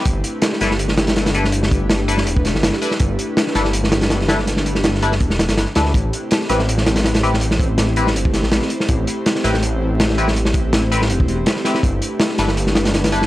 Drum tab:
HH |x-x-x-x-x-xxxxx-|x-x-x-x-x-x-x-x-|x-x-x-x-x-xxx-x-|x-x-x-x-x-xxx-x-|
SD |----oooo-ooooo-o|-o--o--o--oooo-o|----oooo-ooooooo|oo-ooo-o-oooo-oo|
BD |o---------------|--o------o------|o---------------|--------o-------|

HH |x-x-x-x-x-xxxxx-|x-x-x-x-x-x-x-x-|x-x-x-x-x---x-x-|x-x-x-x-x-x-x-x-|
SD |----oooo-ooooo-o|-o--o--o--oooo-o|----oooo----oo-o|-o--o--o----oooo|
BD |o---------------|--o------o------|o---------------|--o------o------|

HH |x-x-x-x-x-xxxxx-|
SD |----oooo-ooooo-o|
BD |o---------------|